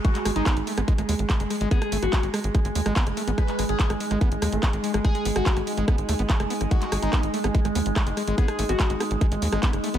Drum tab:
HH |xxoxxxoxxxoxxxox|xxoxxxoxxxoxxxox|xxoxxxoxxxoxxxox|xxoxxxoxxxoxxxox|
CP |-x--x-------x---|----x-------x---|-x--x-------x---|----x-------x---|
SD |--r-r--r-r--r-r-|-r-r--r-r--r-r--|r-r--r-r--r-r--r|r--r-r--r-r--r-r|
BD |o---o---o---o---|o---o---o---o---|o---o---o---o---|o---o---o---o---|

HH |xxoxxxoxxxoxxxox|xxoxxxoxxxoxxxox|
CP |-x--x-------x---|----x-------x---|
SD |--r-r--r-r--r-r-|-r-r--r-r--r-r--|
BD |o---o---o---o---|o---o---o---o---|